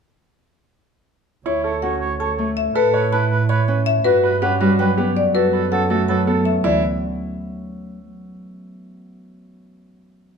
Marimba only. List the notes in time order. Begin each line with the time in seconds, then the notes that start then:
1.46 C#5
1.82 F#5
2.20 A5
2.57 E5
2.76 B4
3.13 A5
3.49 B5
3.86 E5
4.04 B4
4.42 F#5
4.79 G5
5.17 D5
5.35 B4
5.72 F#5
6.08 A5
6.45 E5
6.64 D5